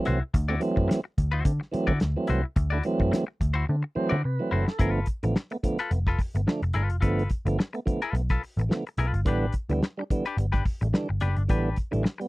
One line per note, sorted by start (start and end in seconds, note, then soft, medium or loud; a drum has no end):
0.00 0.19 E3 medium
0.00 0.19 F#3 medium
0.00 0.19 A3 medium
0.00 0.19 C4 loud
0.05 0.20 C2 medium
0.05 0.23 E4 medium
0.05 0.22 F#4 medium
0.05 0.20 C5 medium
0.05 snare soft
0.05 closed hi-hat medium
0.21 muted clean electric guitar stroke soft
0.34 0.57 D2 loud
0.34 muted clean electric guitar stroke soft
0.34 kick loud
0.34 closed hi-hat medium
0.48 0.55 A3 medium
0.48 0.55 C4 loud
0.48 0.60 E4 medium
0.48 0.61 F#4 medium
0.48 0.62 D5 medium
0.60 1.00 E3 loud
0.60 1.00 F#3 loud
0.60 1.01 A3 loud
0.60 1.01 C4 loud
0.60 closed hi-hat medium
0.76 0.87 F#2 medium
0.76 muted clean electric guitar stroke soft
0.76 kick medium
0.88 muted clean electric guitar stroke soft
0.88 snare loud
0.88 closed hi-hat loud
1.04 muted clean electric guitar stroke soft
1.18 1.41 D2 loud
1.18 kick medium
1.18 closed hi-hat medium
1.32 1.44 E4 medium
1.32 1.44 F#4 medium
1.32 1.44 C5 medium
1.44 1.58 D3 loud
1.44 1.52 A3 soft
1.44 1.53 C4 soft
1.44 kick loud
1.44 closed hi-hat medium
1.60 muted clean electric guitar stroke soft
1.60 snare soft
1.71 1.92 E3 loud
1.71 1.93 F#3 loud
1.71 1.93 A3 loud
1.71 1.93 C4 loud
1.71 muted picked electric bass stroke soft
1.71 closed hi-hat medium
1.87 1.98 D3 loud
1.87 1.99 E4 medium
1.87 1.99 F#4 medium
1.87 2.01 D5 medium
1.87 kick medium
2.00 2.14 D2 medium
2.00 muted clean electric guitar stroke soft
2.00 snare loud
2.00 closed hi-hat medium
2.16 2.42 E3 medium
2.16 2.42 F#3 medium
2.16 2.42 A3 medium
2.16 2.42 C4 medium
2.27 2.42 C2 loud
2.27 2.45 E4 medium
2.27 2.44 F#4 medium
2.27 2.42 C5 medium
2.27 snare soft
2.27 closed hi-hat medium
2.44 muted clean electric guitar stroke soft
2.56 2.80 D2 loud
2.56 muted clean electric guitar stroke soft
2.56 kick loud
2.56 closed hi-hat medium
2.70 2.78 A3 medium
2.70 2.79 D4 medium
2.70 2.83 E4 medium
2.70 2.84 F#4 medium
2.70 2.85 D5 medium
2.83 3.24 E3 loud
2.83 3.24 F#3 loud
2.83 3.25 A3 loud
2.83 3.25 C4 loud
2.83 muted clean electric guitar stroke soft
2.83 closed hi-hat medium
2.99 3.10 F#2 medium
2.99 muted clean electric guitar stroke soft
2.99 kick medium
3.12 muted clean electric guitar stroke soft
3.12 snare loud
3.12 closed hi-hat loud
3.27 muted clean electric guitar stroke soft
3.41 3.64 D2 loud
3.41 kick loud
3.41 closed hi-hat medium
3.54 3.65 E4 medium
3.54 3.66 F#4 medium
3.54 3.66 C5 medium
3.66 3.82 D3 loud
3.66 3.76 A3 soft
3.66 3.77 C4 soft
3.66 muted clean electric guitar stroke soft
3.83 muted clean electric guitar stroke medium
3.95 4.16 E3 loud
3.95 4.16 F#3 loud
3.95 4.16 A3 loud
3.95 4.17 C4 loud
3.95 4.22 C5 medium
3.95 muted picked electric bass stroke soft
4.09 4.22 D3 loud
4.09 4.21 E4 medium
4.09 4.22 F#4 medium
4.09 4.24 D5 medium
4.23 4.38 C3 medium
4.23 4.50 B4 medium
4.23 muted clean electric guitar stroke soft
4.39 4.65 E3 medium
4.39 4.65 F#3 medium
4.39 4.65 A3 medium
4.39 4.66 C4 loud
4.51 4.65 F#1 medium
4.51 4.68 E4 medium
4.51 4.66 F#4 medium
4.51 4.78 A4 medium
4.51 4.65 C5 medium
4.66 muted clean electric guitar stroke medium
4.66 snare medium
4.79 5.03 G1 loud
4.79 5.00 D3 loud
4.79 5.00 F3 medium
4.79 5.00 A3 loud
4.79 5.00 B3 loud
4.79 4.90 E4 medium
4.79 4.91 G#4 medium
4.79 4.92 A#4 medium
4.79 kick loud
4.79 closed hi-hat medium
4.90 5.05 F4 medium
4.90 5.06 A4 medium
4.90 5.06 B4 medium
5.06 kick medium
5.06 closed hi-hat medium
5.23 5.34 A1 medium
5.23 5.34 D3 medium
5.23 5.35 F3 medium
5.23 5.35 A3 medium
5.23 5.35 B3 medium
5.23 muted clean electric guitar stroke soft
5.23 closed hi-hat medium
5.36 muted clean electric guitar stroke soft
5.36 snare loud
5.50 5.57 A3 loud
5.50 5.57 B3 loud
5.50 muted clean electric guitar stroke soft
5.50 closed hi-hat soft
5.63 5.78 D3 medium
5.63 5.78 F3 medium
5.63 5.78 A3 medium
5.63 5.79 B3 loud
5.63 kick medium
5.63 closed hi-hat medium
5.79 5.91 F4 medium
5.79 5.91 A4 medium
5.79 5.92 B4 medium
5.79 closed hi-hat soft
5.91 6.14 F1 loud
5.91 5.98 A3 soft
5.91 5.99 B3 soft
5.91 muted clean electric guitar stroke soft
5.91 closed hi-hat medium
6.07 6.19 F4 medium
6.07 6.20 A4 medium
6.07 6.20 B4 medium
6.07 kick medium
6.07 snare soft
6.19 muted clean electric guitar stroke soft
6.19 kick medium
6.19 open hi-hat medium
6.34 6.45 G1 medium
6.34 6.40 A3 soft
6.34 6.41 B3 soft
6.34 muted clean electric guitar stroke soft
6.34 closed hi-hat medium
6.46 6.61 D3 medium
6.46 6.61 F3 medium
6.46 6.62 A3 medium
6.46 6.62 D4 medium
6.46 muted clean electric guitar stroke soft
6.46 snare loud
6.62 6.73 F1 medium
6.62 muted clean electric guitar stroke soft
6.62 closed hi-hat soft
6.73 6.90 G1 medium
6.73 6.82 A3 soft
6.73 6.83 D4 soft
6.73 6.95 F4 medium
6.73 6.90 A4 medium
6.73 6.89 B4 loud
6.73 closed hi-hat medium
6.90 7.00 F1 medium
6.90 muted clean electric guitar stroke soft
6.90 closed hi-hat medium
7.01 7.26 G1 loud
7.01 7.23 D3 loud
7.01 7.23 F3 medium
7.01 7.23 A3 medium
7.01 7.24 B3 loud
7.01 7.28 F4 medium
7.01 7.28 A4 medium
7.01 7.29 B4 medium
7.01 kick loud
7.01 closed hi-hat medium
7.19 closed hi-hat soft
7.30 kick medium
7.30 closed hi-hat medium
7.45 7.56 G1 medium
7.45 7.57 D3 medium
7.45 7.58 F3 medium
7.45 7.58 A3 medium
7.45 7.58 B3 medium
7.45 muted clean electric guitar stroke soft
7.45 closed hi-hat medium
7.59 muted clean electric guitar stroke soft
7.59 snare loud
7.73 7.80 A3 loud
7.73 7.80 B3 loud
7.73 muted clean electric guitar stroke soft
7.73 closed hi-hat soft
7.86 8.00 D3 medium
7.86 8.01 F3 medium
7.86 8.01 A3 medium
7.86 8.01 B3 medium
7.86 kick medium
7.86 closed hi-hat medium
8.02 8.14 F4 medium
8.02 8.15 A4 medium
8.02 8.15 B4 medium
8.02 closed hi-hat soft
8.13 8.37 B1 medium
8.13 8.21 A3 soft
8.13 8.22 B3 soft
8.13 closed hi-hat medium
8.29 8.42 F4 medium
8.29 8.43 A4 medium
8.29 8.43 B4 medium
8.29 kick medium
8.29 snare soft
8.29 closed hi-hat soft
8.43 muted clean electric guitar stroke soft
8.43 open hi-hat medium
8.57 8.68 A1 medium
8.57 8.63 A3 soft
8.57 8.64 B3 soft
8.57 muted clean electric guitar stroke soft
8.57 closed hi-hat medium
8.69 8.84 D3 medium
8.69 8.84 F3 medium
8.69 8.85 A3 medium
8.69 8.85 B3 medium
8.69 muted clean electric guitar stroke soft
8.69 snare loud
8.87 muted clean electric guitar stroke soft
8.87 closed hi-hat soft
8.97 9.11 B1 medium
8.97 9.06 A3 soft
8.97 9.06 B3 soft
8.97 9.19 F4 medium
8.97 9.15 A4 medium
8.97 9.13 B4 medium
8.97 closed hi-hat medium
9.13 9.25 G1 loud
9.13 muted clean electric guitar stroke soft
9.13 closed hi-hat soft
9.25 9.49 A1 loud
9.25 9.46 D3 loud
9.25 9.46 E3 loud
9.25 9.46 G3 medium
9.25 9.47 B3 loud
9.25 9.53 D4 medium
9.25 9.53 G4 medium
9.25 9.53 B4 loud
9.25 kick loud
9.25 closed hi-hat medium
9.53 kick medium
9.53 closed hi-hat medium
9.69 9.80 D2 medium
9.69 9.81 D3 medium
9.69 9.81 E3 medium
9.69 9.82 G3 medium
9.69 9.82 B3 medium
9.69 muted clean electric guitar stroke soft
9.69 closed hi-hat medium
9.83 muted clean electric guitar stroke medium
9.83 snare loud
9.97 10.03 G3 loud
9.97 10.04 D4 loud
9.97 muted clean electric guitar stroke medium
10.10 10.25 D3 medium
10.10 10.25 E3 medium
10.10 10.25 G3 medium
10.10 10.25 B3 medium
10.10 kick medium
10.10 closed hi-hat medium
10.26 10.37 D4 medium
10.26 10.37 G4 medium
10.26 10.37 B4 medium
10.26 closed hi-hat soft
10.37 10.61 G1 loud
10.37 10.46 G3 soft
10.37 10.47 B3 soft
10.37 muted clean electric guitar stroke soft
10.37 closed hi-hat medium
10.52 10.63 D4 medium
10.52 10.64 G4 medium
10.52 10.65 B4 medium
10.52 kick medium
10.52 snare soft
10.52 closed hi-hat soft
10.66 kick medium
10.66 open hi-hat medium
10.81 10.92 A1 loud
10.81 10.87 G3 soft
10.81 10.88 A3 soft
10.81 muted clean electric guitar stroke soft
10.81 closed hi-hat medium
10.93 11.08 D3 medium
10.93 11.08 E3 medium
10.93 11.08 G3 medium
10.93 11.08 D4 medium
10.93 muted clean electric guitar stroke soft
10.93 snare loud
11.09 11.20 G1 medium
11.09 muted clean electric guitar stroke soft
11.20 11.35 F#1 medium
11.20 11.29 G3 soft
11.20 11.30 B3 soft
11.20 11.42 D4 medium
11.20 11.37 G4 medium
11.20 11.36 B4 medium
11.20 snare soft
11.20 closed hi-hat medium
11.36 11.47 G1 loud
11.36 muted clean electric guitar stroke soft
11.36 closed hi-hat soft
11.48 11.73 A1 loud
11.48 11.69 D3 loud
11.48 11.69 E3 medium
11.48 11.70 G3 medium
11.48 11.70 B3 loud
11.48 11.76 D4 medium
11.48 11.76 G4 medium
11.48 11.76 B4 loud
11.48 kick loud
11.48 closed hi-hat medium
11.76 kick medium
11.76 closed hi-hat medium
11.91 12.04 A1 medium
11.91 12.03 D3 medium
11.91 12.04 E3 medium
11.91 12.04 G3 medium
11.91 12.04 A3 medium
11.91 muted clean electric guitar stroke soft
11.91 closed hi-hat medium
12.03 muted clean electric guitar stroke soft
12.03 snare loud
12.18 12.26 G3 loud
12.18 12.27 B3 loud
12.18 muted clean electric guitar stroke soft
12.18 closed hi-hat soft